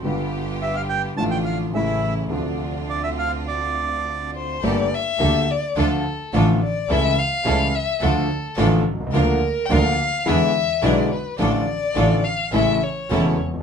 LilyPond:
<<
  \new Staff \with { instrumentName = "Bandoneon" } { \time 4/4 \key d \minor \tempo 4 = 106 r4 e''16 f''16 g''8 a''16 g''16 f''8 e''8. r16 | r4 d''16 e''16 f''8 d''4. r8 | r1 | r1 |
r1 | r1 | }
  \new Staff \with { instrumentName = "Violin" } { \time 4/4 \key d \minor r1 | r2. r8 c''8 | d''8 e''4 d''8 a'4 r8 d''8 | e''8 f''4 e''8 a'4 r4 |
bes'8.~ bes'32 g''32 f''4 e''4 d''8 b'8 | d''4. f''8 e''8 cis''4 r8 | }
  \new Staff \with { instrumentName = "String section" } { \time 4/4 \key d \minor <b f' g'>2 <a d' f'>4 <a cis' e'>4 | <c' d' f'>1 | <bes g' a'>8 r8 <bes g' a'>8 r8 <d' f' a'>8 r8 <d' f' a'>8 r8 | <cis' e' a'>8 r8 <cis' e' a'>8 r8 <d' f' a'>8 r8 <d' f' a'>8 r8 |
<d' f' bes'>8 r8 <d' f' bes'>8 r8 <d' e' gis'>8 r8 <d' e' gis'>8 r8 | <d' f' a'>8 r8 <d' f' a'>8 r8 <cis' e' a'>8 r8 <cis' e' a'>8 r8 | }
  \new Staff \with { instrumentName = "Grand piano" } { \clef bass \time 4/4 \key d \minor <g,, g, d g b f'>2 <a,, a, d f a f'>4 <a,, a, cis e a e'>4 | <d, c d f a d'>1 | <g,, g, d a bes g'>8 r8 <d, d a bes g'>8 r8 <d, d f a f'>8 r8 <a,, a, d f a f'>8 r8 | <cis, cis e a e'>8 r8 <cis, cis e a e'>8 r8 <d, d f a f'>8 r8 <a,, a, d f a f'>8 r32 b,,32 c,32 cis,32 |
<d, d f bes f'>8 r8 <d, d f bes f'>8 r8 <e, d e gis b e'>8 r8 <b,, b, d gis b e'>8 r8 | <a,, a, d f a f'>8 r8 <a,, a, d f a f'>8 r8 <a,, a, cis e a e'>8 r8 <e,, e, cis e a e'>8 r32 e,32 f,32 r32 | }
  \new Staff \with { instrumentName = "Double bass" } { \clef bass \time 4/4 \key d \minor g,,2 a,,4 a,,4 | d,1 | g,,8 r8 d,8 r8 d,8 r8 a,,8 r8 | cis,8 r8 cis,8 r8 d,8 r8 a,,8 c,8 |
d,8 r8 d,8 r8 e,8 r8 b,,8 r8 | a,,8 r8 a,,8 r8 a,,8 r8 e,,8 f,,8 | }
>>